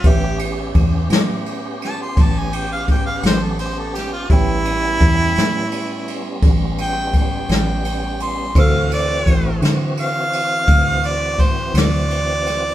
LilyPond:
<<
  \new Staff \with { instrumentName = "Harmonica" } { \time 12/8 \key a \dorian \tempo 4. = 56 g'8 r2 a''16 c'''16 a''16 gis''16 g''16 f''16 g''16 f''16 c''16 a'16 c''16 a'16 g'16 f'16 | e'2. r8 g''8 g''4. c'''8 | f''8 d''4 r8 f''4. d''8 c''8 d''4. | }
  \new Staff \with { instrumentName = "Grand piano" } { \time 12/8 \key a \dorian <g' b' cis'' e''>1. | <b g' cis'' g''>1. | <fis' a' c'' e'''>1. | }
  \new Staff \with { instrumentName = "Tonewheel organ" } { \time 12/8 \key a \dorian <b cis' g'>1. | <g b cis'>1. | <e c' fis'>1. | }
  \new Staff \with { instrumentName = "Fingered electric bass" } { \clef bass \time 12/8 \key a \dorian a,,4 e,8 a,4. a,,4. a,,4. | a,,4 e,8 a,4. a,,4. a,,4. | d,4 a,,8 d4. d,4. d,4. | }
  \new DrumStaff \with { instrumentName = "Drums" } \drummode { \time 12/8 <bd cymr>8 cymr8 <bd cymr>8 <cymr sn>8 cymr8 <cymr sn>8 <bd cymr>8 cymr8 <bd cymr>8 <cymr sn>8 cymr8 <cymr sn>8 | <bd cymr>8 cymr8 <bd cymr>8 <cymr sn>8 cymr8 cymr8 <bd cymr>8 cymr8 <bd cymr>8 <cymr sn>8 cymr8 cymr8 | <bd cymr>8 cymr8 <bd cymr>8 <cymr sn>8 cymr8 cymr8 <bd cymr>8 cymr8 <bd cymr>8 <cymr sn>8 cymr8 <cymr sn>8 | }
>>